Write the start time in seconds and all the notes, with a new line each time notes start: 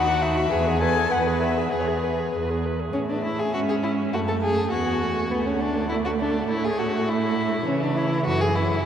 Already playing: D#2 F#4 F#5
0.07 F#4
0.22 D#4 E5
0.37 F#4
0.51 E2 G#4 B4
0.67 G#4
0.80 A4 B4 G#5
0.96 G#4
1.11 E2 B4 F#5
1.27 G#4
1.41 B4 E5
1.57 G#4
1.71 E2 G#4 B4
1.80 C#5
1.87 G#4 B4
2.04 B4
2.20 G#4
2.33 E2 B4
2.50 G#4
2.65 B4
2.80 G#4
2.93 A2 C#4 E5
3.10 D4
3.24 E4
3.39 G#4
3.54 G#2 C#4 F#4
3.69 G#4
3.83 E4
4.13 F#2 A3 F#4 A5
4.28 A4
4.42 G#4
4.71 E2 B3 F#4 G#5
5.02 A3
5.31 D2 A3 B3 F#5
5.47 C#4
5.61 D4
5.89 E4 D5
6.05 F#4
6.20 D4
6.50 A2 E4 C#5
6.65 G#4
6.79 F#4
7.09 E4 E5
7.67 C#3 E3 C#4 E5
7.83 D4
7.97 E4 C#5
8.26 F#2 F#4 A4
8.41 G#4
8.56 E4 C#5